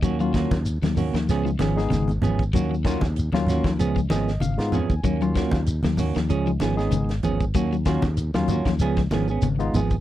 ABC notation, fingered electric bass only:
X:1
M:4/4
L:1/16
Q:"Swing 16ths" 1/4=96
K:Ebm
V:1 name="Fingered electric bass" clef=bass
E,,3 E,,2 E,,2 E,, D,,2 A,,,2 A,,,2 A,,,2 | E,,3 E,,2 E,,2 E,, D,,2 A,,,2 A,,, A,, F,, E,, | E,,3 E,,2 E,,2 E,, D,,2 A,,,2 A,,,2 A,,,2 | E,,3 E,,2 E,,2 E,, D,,2 A,,,2 A,,,2 A,,,2 |]